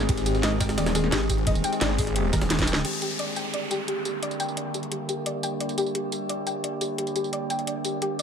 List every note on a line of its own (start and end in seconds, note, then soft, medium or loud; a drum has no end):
0.00 2.81 D#3 medium
0.00 2.81 G#3 medium
0.00 2.81 C4 medium
0.00 2.81 G#4 medium
0.00 snare soft
0.00 snare medium
0.00 tambourine soft
0.09 0.42 G#1 loud
0.09 0.18 G4 medium
0.09 kick loud
0.09 closed hi-hat loud
0.09 ride medium
0.17 snare soft
0.17 closed hi-hat soft
0.17 tambourine soft
0.26 0.40 G4 medium
0.26 closed hi-hat medium
0.26 ride medium
0.26 tambourine medium
0.35 snare medium
0.35 tambourine soft
0.43 0.76 G#1 medium
0.43 0.53 D#5 loud
0.43 snare loud
0.43 closed hi-hat medium
0.43 ride medium
0.52 snare soft
0.60 0.70 G5 loud
0.60 kick loud
0.60 snare loud
0.60 closed hi-hat medium
0.60 ride medium
0.60 tambourine medium
0.69 snare loud
0.69 ride medium
0.78 1.11 D#1 loud
0.78 0.83 D5 medium
0.78 snare loud
0.78 closed hi-hat loud
0.78 ride medium
0.86 snare loud
0.86 snare soft
0.86 ride medium
0.95 1.04 G#4 loud
0.95 snare loud
0.95 closed hi-hat medium
0.95 ride medium
0.95 tambourine medium
1.04 snare medium
1.12 1.45 G#1 loud
1.12 1.22 G4 medium
1.12 snare loud
1.12 closed hi-hat loud
1.12 ride medium
1.29 1.44 G4 medium
1.29 kick medium
1.29 closed hi-hat medium
1.29 ride medium
1.29 tambourine medium
1.38 ride soft
1.47 1.63 D#1 loud
1.47 1.56 D#5 loud
1.47 kick loud
1.47 closed hi-hat loud
1.47 ride medium
1.55 closed hi-hat soft
1.55 tambourine soft
1.64 1.73 G5 loud
1.64 closed hi-hat medium
1.64 ride medium
1.64 tambourine medium
1.73 snare soft
1.73 closed hi-hat soft
1.73 tambourine soft
1.81 2.32 G#1 loud
1.81 1.87 D5 medium
1.81 snare loud
1.81 closed hi-hat medium
1.81 ride medium
1.90 snare soft
1.98 2.08 G#4 loud
1.98 kick loud
1.98 open hi-hat medium
1.98 ride medium
1.98 tambourine medium
2.07 snare medium
2.07 closed hi-hat soft
2.16 2.25 G4 medium
2.16 closed hi-hat loud
2.16 ride medium
2.33 2.83 D#1 loud
2.33 2.39 A#4 loud
2.33 kick loud
2.33 snare loud
2.33 closed hi-hat medium
2.33 ride medium
2.33 tambourine medium
2.41 snare loud
2.41 ride medium
2.50 snare loud
2.50 snare medium
2.50 closed hi-hat loud
2.50 ride medium
2.59 kick medium
2.59 snare loud
2.59 closed hi-hat soft
2.59 ride medium
2.62 snare medium
2.67 2.77 G5 medium
2.67 closed hi-hat medium
2.67 ride medium
2.67 tambourine medium
2.73 snare loud
2.76 snare soft
2.76 tambourine soft
2.85 8.22 D3 medium
2.85 8.22 G3 medium
2.85 8.22 A#3 medium
2.85 2.94 G4 medium
2.85 8.22 G4 medium
2.85 closed hi-hat medium
2.85 crash medium
2.85 downlifter medium
2.93 closed hi-hat soft
2.93 tambourine soft
3.02 3.16 G4 medium
3.02 closed hi-hat medium
3.02 tambourine medium
3.11 tambourine soft
3.19 3.29 D5 loud
3.19 closed hi-hat medium
3.36 3.46 G5 medium
3.36 closed hi-hat medium
3.36 tambourine medium
3.54 3.59 D5 medium
3.54 closed hi-hat medium
3.71 3.80 G4 medium
3.71 closed hi-hat medium
3.71 tambourine medium
3.88 3.98 G4 medium
3.88 closed hi-hat medium
4.05 4.20 G4 medium
4.05 closed hi-hat medium
4.05 tambourine medium
4.23 4.32 D5 loud
4.23 closed hi-hat medium
4.31 closed hi-hat soft
4.31 tambourine soft
4.40 4.49 G5 loud
4.40 closed hi-hat medium
4.40 tambourine medium
4.48 tambourine soft
4.57 4.63 D5 medium
4.57 closed hi-hat medium
4.74 4.84 G4 loud
4.74 closed hi-hat medium
4.74 tambourine medium
4.83 closed hi-hat soft
4.92 5.01 G4 medium
4.92 closed hi-hat medium
5.09 5.23 G4 medium
5.09 closed hi-hat medium
5.09 tambourine medium
5.26 5.35 D5 loud
5.26 closed hi-hat medium
5.43 5.53 G5 loud
5.43 closed hi-hat medium
5.43 tambourine medium
5.60 5.66 D5 medium
5.60 closed hi-hat medium
5.69 closed hi-hat soft
5.69 tambourine soft
5.78 5.87 G4 loud
5.78 closed hi-hat medium
5.78 tambourine medium
5.86 tambourine soft
5.95 6.04 G4 medium
5.95 closed hi-hat medium
6.12 6.26 G4 medium
6.12 closed hi-hat medium
6.12 tambourine medium
6.29 6.39 D5 loud
6.29 closed hi-hat medium
6.47 6.56 G5 loud
6.47 closed hi-hat medium
6.47 tambourine medium
6.64 6.70 D5 medium
6.64 closed hi-hat medium
6.81 6.91 G4 loud
6.81 closed hi-hat medium
6.81 tambourine medium
6.98 7.08 G4 medium
6.98 closed hi-hat medium
7.07 closed hi-hat soft
7.07 tambourine soft
7.16 7.30 G4 medium
7.16 closed hi-hat medium
7.16 tambourine medium
7.24 tambourine soft
7.33 7.42 D5 loud
7.33 closed hi-hat medium
7.50 7.60 G5 loud
7.50 closed hi-hat medium
7.50 tambourine medium
7.59 closed hi-hat soft
7.67 7.73 D5 medium
7.67 closed hi-hat medium
7.85 7.94 G4 medium
7.85 closed hi-hat medium
7.85 tambourine medium
8.02 8.11 G4 loud
8.02 closed hi-hat medium
8.19 8.22 D5 loud
8.19 closed hi-hat medium
8.19 tambourine medium